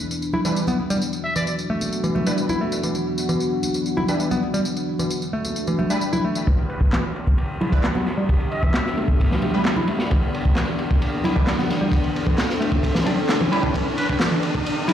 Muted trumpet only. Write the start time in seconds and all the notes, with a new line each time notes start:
1.24 E5
1.36 D5
1.47 D5
6.69 B4
6.81 B4
7.73 B4
7.84 B4
8.52 E5
13.97 B4
14.09 B4